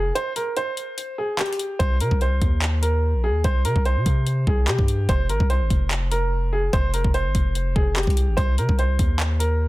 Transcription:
Already playing: 808-style bass F1, upright piano G#4
0.15 upright piano C5, closed hi-hat
0.36 upright piano A#4, closed hi-hat
0.57 upright piano C5, closed hi-hat
0.77 closed hi-hat
0.98 closed hi-hat
1.18 upright piano G#4
1.39 upright piano G4, clap, closed hi-hat
1.46 closed hi-hat
1.53 closed hi-hat
1.59 closed hi-hat
1.79 808-style bass C2, upright piano C5, kick, closed hi-hat
2.00 808-style bass C3, upright piano A#4, closed hi-hat
2.11 808-style bass C2, kick
2.21 upright piano C5, closed hi-hat
2.42 808-style bass D#2, kick, closed hi-hat
2.62 clap, closed hi-hat
2.82 upright piano A#4, closed hi-hat
3.14 808-style bass A#1
3.24 upright piano G#4
3.29 808-style bass D#2
3.44 808-style bass C2, upright piano C5, kick, closed hi-hat
3.65 808-style bass C3, upright piano A#4, closed hi-hat
3.76 808-style bass C2, kick
3.85 upright piano C5, closed hi-hat
3.96 808-style bass C3
4.06 808-style bass C3, kick, closed hi-hat
4.27 closed hi-hat
4.47 808-style bass C2, upright piano G#4, kick
4.68 808-style bass C3, upright piano G4, clap, closed hi-hat
4.79 808-style bass G2, kick
4.88 closed hi-hat
5.09 808-style bass F1, upright piano C5, kick, closed hi-hat
5.29 808-style bass G#1, upright piano A#4, closed hi-hat
5.40 808-style bass C2, kick
5.50 upright piano C5, closed hi-hat
5.61 808-style bass G#1
5.70 808-style bass F1, kick, closed hi-hat
5.91 clap, closed hi-hat
6.11 upright piano A#4, closed hi-hat
6.53 upright piano G#4
6.73 808-style bass F1, upright piano C5, kick, closed hi-hat
6.94 upright piano A#4, closed hi-hat
7.04 808-style bass F1, kick
7.14 upright piano C5, closed hi-hat
7.25 808-style bass G#1
7.35 808-style bass F1, kick, closed hi-hat
7.55 closed hi-hat
7.76 808-style bass F1, upright piano G#4, kick
7.96 upright piano G4, clap, closed hi-hat
8.03 closed hi-hat
8.07 808-style bass C2, kick, closed hi-hat
8.17 closed hi-hat
8.28 808-style bass G#1
8.37 808-style bass C2, upright piano C5, kick, closed hi-hat
8.58 808-style bass C3, upright piano A#4, closed hi-hat
8.69 808-style bass C2, kick
8.79 upright piano C5, closed hi-hat
8.99 808-style bass D#2, kick, closed hi-hat
9.20 clap, closed hi-hat
9.39 upright piano A#4, closed hi-hat

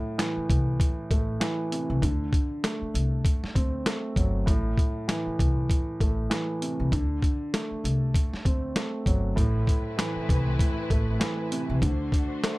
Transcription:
Already playing: grand piano A2
0.18 grand piano E3, snare, closed hi-hat
0.37 muted upright bass stroke
0.50 upright bass C2, kick, closed hi-hat
0.80 kick, closed hi-hat
1.11 upright bass A1, grand piano A3, kick, closed hi-hat
1.40 grand piano E3, snare, closed hi-hat
1.72 grand piano C3, closed hi-hat
1.90 upright bass C2
2.02 upright bass D2, grand piano D3, kick, closed hi-hat
2.33 kick, closed hi-hat
2.64 grand piano A3, snare, closed hi-hat
2.82 muted upright bass stroke
2.94 upright bass C2, closed hi-hat
3.25 kick, closed hi-hat
3.43 muted upright bass stroke, snare
3.55 upright bass D2, grand piano C4, kick, closed hi-hat
3.86 grand piano A3, snare, closed hi-hat
4.16 upright bass G1, grand piano F#3, kick, closed hi-hat
4.46 upright bass A1, grand piano A2, kick, closed hi-hat
4.78 kick, closed hi-hat
5.08 grand piano E3, snare, closed hi-hat
5.27 muted upright bass stroke
5.39 upright bass C2, kick, closed hi-hat
5.70 kick, closed hi-hat
6.00 upright bass A1, grand piano A3, kick, closed hi-hat
6.30 grand piano E3, snare, closed hi-hat
6.61 grand piano C3, closed hi-hat
6.80 upright bass C2
6.92 upright bass D2, grand piano D3, kick, closed hi-hat
7.22 kick, closed hi-hat
7.54 grand piano A3, snare, closed hi-hat
7.71 muted upright bass stroke
7.84 upright bass C2, closed hi-hat
8.14 kick, closed hi-hat
8.33 muted upright bass stroke, snare
8.45 upright bass D2, grand piano C4, kick, closed hi-hat
8.76 grand piano A3, snare, closed hi-hat
9.06 upright bass G1, grand piano F#3, kick, closed hi-hat
9.36 upright bass A1, grand piano A2, string section A3 C4 E4 B4, kick, closed hi-hat
9.67 kick, closed hi-hat
9.98 grand piano E3, snare, closed hi-hat
10.16 muted upright bass stroke
10.29 upright bass C2, kick, closed hi-hat
10.59 kick, closed hi-hat
10.90 upright bass A1, grand piano A3, kick, closed hi-hat
11.20 grand piano E3, snare, closed hi-hat
11.51 grand piano C3, closed hi-hat
11.70 upright bass C2
11.82 upright bass D2, grand piano D3, string section A3 D4 F#4 C5, kick, closed hi-hat
12.12 kick, closed hi-hat
12.43 grand piano A3, snare, closed hi-hat

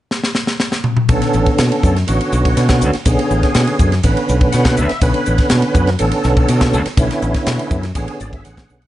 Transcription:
0.11 snare
0.24 snare
0.35 snare
0.47 snare
0.60 snare
0.72 snare
0.84 mid tom
0.97 mid tom
1.09 fingered electric bass B1, tonewheel organ D3 B3 C#4 A4, kick, hi-hat pedal, ride
1.22 snare, ride
1.33 fingered electric bass A1, hi-hat pedal
1.46 kick, ride
1.58 fingered electric bass B2, snare, hi-hat pedal, ride
1.72 ride
1.83 fingered electric bass F#2, kick, hi-hat pedal
1.96 snare, ride
2.07 fingered electric bass A1, tonewheel organ D3 B3 C#4 F#4, hi-hat pedal, ride
2.21 ride
2.32 fingered electric bass B1, hi-hat pedal
2.45 kick, ride
2.57 fingered electric bass B2, snare, hi-hat pedal, ride
2.69 kick, snare, ride
2.81 fingered electric bass D2, hi-hat pedal
2.93 snare, ride
3.05 fingered electric bass B1, tonewheel organ D3 B3 C#4 G#4, kick, hi-hat pedal, ride
3.19 ride
3.30 fingered electric bass A1, hi-hat pedal
3.43 kick, snare, ride
3.55 fingered electric bass B2, snare, hi-hat pedal, ride
3.67 ride
3.79 fingered electric bass F#2, kick, hi-hat pedal
3.92 snare, ride
4.03 fingered electric bass A1, tonewheel organ D3 B3 C#4 B4, kick, hi-hat pedal, ride
4.17 ride
4.29 fingered electric bass B1, hi-hat pedal
4.41 kick, ride
4.52 fingered electric bass B2, tonewheel organ F#5, snare, hi-hat pedal, ride
4.65 kick, snare, ride
4.77 fingered electric bass D2, tonewheel organ E5, hi-hat pedal
4.89 muted fingered electric bass stroke, snare, ride
5.01 fingered electric bass B1, tonewheel organ D3 B3 C#4 B4, kick, hi-hat pedal, ride
5.14 ride
5.25 fingered electric bass A1, hi-hat pedal
5.38 kick, snare, ride
5.50 fingered electric bass B2, snare, hi-hat pedal, ride
5.62 ride
5.74 fingered electric bass F#2, kick, hi-hat pedal
5.87 snare, ride
5.99 fingered electric bass A1, tonewheel organ D3 B3 C#4 A4, hi-hat pedal, ride
6.12 ride
6.24 fingered electric bass B1, snare, hi-hat pedal
6.37 kick, ride
6.48 fingered electric bass B2, hi-hat pedal, ride
6.61 kick, snare, ride
6.73 fingered electric bass D2, hi-hat pedal
6.86 snare, ride
6.97 fingered electric bass B1, tonewheel organ D3 B3 C#4 E4, kick, hi-hat pedal, ride
7.11 snare, ride
7.22 fingered electric bass A1, hi-hat pedal
7.34 kick, snare, ride
7.46 fingered electric bass B2, snare, hi-hat pedal, ride
7.59 ride
7.71 fingered electric bass F#2, kick, hi-hat pedal
7.83 snare, ride
7.95 fingered electric bass A1, tonewheel organ D3 B3 C#4 G#4, kick, hi-hat pedal, ride
8.08 ride
8.20 fingered electric bass G#1, tonewheel organ D5, hi-hat pedal
8.33 tonewheel organ E5, kick, ride
8.44 fingered electric bass A1, tonewheel organ F#5, snare, hi-hat pedal, ride
8.57 kick, snare, ride
8.69 fingered electric bass B1, hi-hat pedal
8.82 ride

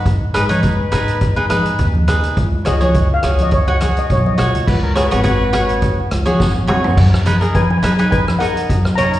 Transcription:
Already playing: steel pan F#5
0.06 upright bass G#2, kick, closed hi-hat
0.34 upright bass G#2, cavaquinho D#4 G#4 B4, trumpet B4, cross-stick, closed hi-hat
0.49 cavaquinho D#4 G#4 B4, trumpet C#5, closed hi-hat, high conga
0.62 trumpet B4, kick, closed hi-hat, low conga
0.92 upright bass G#2, cavaquinho D#4 G#4 B4, cross-stick, closed hi-hat, low conga
1.08 closed hi-hat
1.21 kick, closed hi-hat
1.36 cavaquinho D#4 G#4 B4
1.50 cavaquinho D#4 G#4 B4, cross-stick, closed hi-hat, high conga
1.65 closed hi-hat
1.79 upright bass D#2, kick, closed hi-hat
1.95 high conga
2.08 cavaquinho D#4 G#4 B4, cross-stick, closed hi-hat, low conga
2.23 closed hi-hat
2.37 upright bass C#2, kick, closed hi-hat
2.65 upright bass C#2, cavaquinho F#4 G#4 C#5, steel pan D#5, cross-stick, closed hi-hat, low conga
2.81 cavaquinho F#4 G#4 C#5, steel pan C#5, closed hi-hat, high conga
2.94 kick, closed hi-hat, low conga
3.14 steel pan F5
3.23 upright bass C#2, cavaquinho F#4 G#4 C#5, cross-stick, closed hi-hat, low conga
3.39 closed hi-hat, high conga
3.43 steel pan D#5
3.51 steel pan C#5, kick, closed hi-hat
3.68 cavaquinho F#4 G#4 C#5, steel pan F#5
3.81 cavaquinho F#4 G#4 C#5, cross-stick, closed hi-hat, high conga
3.97 steel pan D#5, closed hi-hat
4.10 upright bass B1, steel pan C#5, kick, closed hi-hat
4.26 steel pan D#5, high conga
4.38 upright bass C#2, cavaquinho F#4 G#4 C#5, cross-stick, closed hi-hat, low conga
4.55 closed hi-hat, low conga
4.67 upright bass C#2, trumpet B4, kick, crash
4.82 trumpet A#4
4.95 cavaquinho F#4 G#4 C#5, trumpet B4, cross-stick, closed hi-hat
5.11 upright bass G#1, cavaquinho F#4 G#4 C#5, closed hi-hat
5.24 cavaquinho F#4 G#4 C#5, kick, closed hi-hat
5.53 cavaquinho F#4 G#4 C#5, cross-stick, closed hi-hat, low conga
5.69 closed hi-hat
5.82 kick, closed hi-hat
6.11 upright bass C#2, cross-stick, closed hi-hat
6.26 cavaquinho F#4 G#4 C#5, closed hi-hat, high conga
6.40 upright bass G#1, kick, snare, low conga
6.56 high conga
6.67 upright bass F2, cavaquinho F#4 G#4 C#5, mid tom, low conga
6.84 floor tom
6.97 upright bass F#2, kick, crash
7.12 upright bass F#2, cross-stick
7.26 cavaquinho D#4 G#4 B4, closed hi-hat, high conga, low conga
7.41 cavaquinho D#4 G#4 A#4, closed hi-hat
7.55 steel pan B4 G#5, kick, closed hi-hat, high conga
7.62 steel pan G#5
7.70 steel pan G#5, high conga
7.78 steel pan G#5
7.83 upright bass F#3, cavaquinho D#4 G#4 B4, steel pan G#5, cross-stick, closed hi-hat, low conga
7.92 steel pan G#5
7.99 cavaquinho D#4 G#4 B4, steel pan G#5, closed hi-hat
8.11 steel pan B4 G#5, kick, closed hi-hat
8.28 cross-stick, high conga
8.39 cavaquinho D#4 G#4 D#5, steel pan A#4 F#5, closed hi-hat
8.57 closed hi-hat
8.70 upright bass F#2, kick, closed hi-hat
8.85 cross-stick
8.95 cavaquinho D#4 G#4 A#4, steel pan C#5 A#5, closed hi-hat, low conga
9.03 steel pan A#5
9.12 steel pan A#5, closed hi-hat

